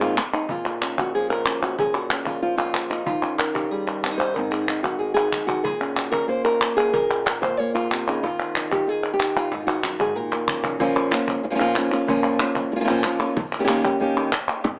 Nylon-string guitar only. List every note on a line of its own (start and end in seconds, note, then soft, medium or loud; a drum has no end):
0.00 0.16 G#2 medium
0.00 0.16 A#2 medium
0.00 0.17 D#3 medium
0.00 0.17 G#3 medium
0.00 0.17 C4 medium
0.00 0.18 F4 medium
0.17 muted nylon-string guitar stroke medium
0.33 0.50 D#4 medium
0.49 1.77 A#2 medium
0.49 0.98 F4 medium
0.83 1.46 C#4 soft
0.99 1.14 F#4 medium
1.15 1.77 F3 medium
1.15 1.30 G#4 medium
1.30 1.62 A#4 medium
1.46 2.11 C#4 soft
1.63 1.79 F#4 medium
1.78 3.05 A#2 medium
1.78 1.95 G#4 medium
1.95 2.27 F#4 medium
2.11 2.90 C#4 soft
2.27 2.41 F4 medium
2.42 3.05 F3 medium
2.42 2.56 F4 medium
2.58 3.05 F4 medium
2.90 3.07 D#4 medium
3.06 4.33 D#3 medium
3.06 3.38 F4 medium
3.23 4.34 C#4 soft
3.39 3.71 A#4 soft
3.54 4.03 G4 medium
3.71 4.34 G3 medium
3.71 3.87 G#4 medium
3.87 4.17 A#4 medium
4.03 4.12 C4 soft
4.12 4.36 D#4 soft
4.18 4.34 C5 medium
4.34 5.63 G#2 medium
4.34 4.99 D#3 soft
4.34 4.51 A#4 medium
4.38 5.64 C4 soft
4.38 4.68 D#4 soft
4.51 4.98 G#4 medium
4.69 4.83 D#4 soft
4.83 5.32 F#4 medium
4.99 5.65 D#3 medium
4.99 5.13 G#4 medium
5.14 5.63 G#4 medium
5.34 5.47 D#4 soft
5.47 5.64 F#4 medium
5.64 6.93 A#2 medium
5.64 6.29 G#4 medium
5.80 7.45 C#4 soft
6.12 6.29 A#4 medium
6.28 7.45 A#3 medium
6.28 6.44 C5 medium
6.45 6.92 A#4 medium
6.62 6.76 F4 soft
6.77 7.26 G#4 medium
6.93 7.91 A#2 medium
6.93 7.26 A#4 medium
7.27 7.41 A#4 soft
7.42 7.57 C5 medium
7.57 8.24 A#3 medium
7.57 7.74 C#5 medium
7.75 8.22 F4 medium
7.91 8.07 C3 soft
8.08 8.24 C#3 medium
8.08 8.23 D#4 medium
8.23 10.80 D#3 medium
8.23 9.04 F4 medium
8.56 8.86 D#4 soft
8.72 8.89 G4 medium
8.87 9.20 D#4 medium
8.87 9.12 G#4 medium
9.14 9.53 G4 medium
9.21 9.51 D#4 soft
9.37 9.52 F4 medium
9.52 9.83 G#2 medium
9.52 9.66 D#4 medium
9.60 10.00 F4 medium
9.67 10.16 F#4 medium
9.83 9.98 F#2 soft
9.99 10.16 G#2 medium
9.99 10.16 G#4 medium
10.16 10.78 A#2 medium
10.16 10.80 A#4 medium
10.33 10.79 A#3 soft
10.49 10.63 C#4 soft
10.64 10.79 C#4 soft
10.79 11.11 A#2 medium
10.79 11.12 F3 medium
10.79 11.12 A#3 medium
10.79 11.12 C#4 medium
10.79 11.11 F4 medium
11.12 11.43 A#3 soft
11.12 11.43 C#4 soft
11.12 11.44 F4 soft
11.43 muted nylon-string guitar stroke medium
11.50 11.54 F3 medium
11.50 11.54 A#3 soft
11.50 11.54 C#4 medium
11.50 11.55 F4 medium
11.55 11.59 F3 medium
11.55 11.59 A#3 medium
11.55 11.59 C#4 medium
11.55 11.60 F4 medium
11.60 11.76 A#2 medium
11.60 11.75 F3 medium
11.60 11.76 A#3 medium
11.60 11.76 C#4 medium
11.60 11.76 F4 medium
11.76 11.92 F3 medium
11.76 11.92 A#3 medium
11.76 11.91 C#4 medium
11.76 11.91 F4 medium
11.92 12.08 A#3 soft
11.92 12.08 C#4 soft
11.92 12.08 F4 soft
12.08 12.39 A#2 medium
12.08 12.40 F3 medium
12.08 12.40 A#3 medium
12.08 12.40 C#4 medium
12.08 12.39 F4 medium
12.40 12.72 A#3 soft
12.40 12.72 C#4 soft
12.40 12.72 F4 medium
12.72 muted nylon-string guitar stroke medium
12.76 12.83 F3 medium
12.76 12.79 A#3 medium
12.76 12.79 C#4 medium
12.76 12.80 F4 medium
12.80 12.88 F3 medium
12.80 12.83 A#3 medium
12.80 12.84 C#4 medium
12.80 12.84 F4 medium
12.85 12.88 A#3 medium
12.85 12.88 C#4 medium
12.85 12.89 F4 medium
12.89 13.04 A#2 medium
12.89 13.03 F3 medium
12.89 13.04 A#3 medium
12.89 13.04 C#4 medium
12.89 13.05 F4 medium
13.04 13.20 F3 medium
13.04 13.20 A#3 medium
13.04 13.20 C#4 medium
13.04 13.19 F4 medium
13.20 13.37 A#3 soft
13.20 13.36 C#4 soft
13.20 13.36 F4 soft
13.37 muted nylon-string guitar stroke medium
13.59 13.63 D#3 medium
13.59 13.63 A#3 medium
13.59 13.64 C#4 medium
13.59 13.64 G4 medium
13.64 13.67 D#3 medium
13.64 13.68 A#3 medium
13.64 13.68 C#4 medium
13.64 13.68 G4 medium
13.68 13.84 D#3 medium
13.68 13.84 A#3 medium
13.68 13.83 C#4 medium
13.68 13.82 G4 medium
13.84 14.00 A#3 soft
13.84 14.00 C#4 soft
13.84 13.99 G4 medium
14.00 14.31 D#3 medium
14.00 14.31 A#3 medium
14.00 14.31 C#4 medium
14.00 14.32 G4 medium
14.32 muted nylon-string guitar stroke medium
14.65 muted nylon-string guitar stroke medium